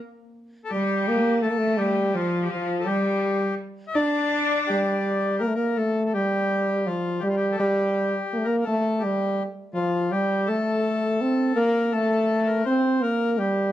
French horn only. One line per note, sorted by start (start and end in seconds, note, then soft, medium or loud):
0.72 1.10 G3 medium
1.08 1.44 A#3 loud
1.43 1.52 A3 medium
1.50 1.59 A#3 medium
1.58 1.80 A3 medium
1.78 2.17 G3 medium
2.15 2.51 F3 medium
2.51 2.89 F3 medium
2.87 3.60 G3 medium
3.95 4.64 D4 loud
4.70 5.42 G3 medium
5.41 5.49 A#3 medium
5.47 5.58 A3 medium
5.56 5.79 A#3 medium
5.78 6.16 A3 medium
6.15 6.89 G3 medium
6.87 7.22 F3 medium
7.23 7.56 G3 medium
7.60 8.27 G3 medium
8.33 8.39 A#3 medium
8.38 8.47 A3 medium
8.46 8.67 A#3 medium
8.67 9.05 A3 medium
9.03 9.48 G3 medium
9.74 10.14 F3 medium
10.12 10.51 G3 medium
10.49 11.23 A3 medium
11.21 11.55 C4 medium
11.56 11.96 A#3 loud
11.94 12.66 A3 loud
12.66 13.03 C4 loud
13.02 13.40 A#3 medium
13.38 13.72 G3 medium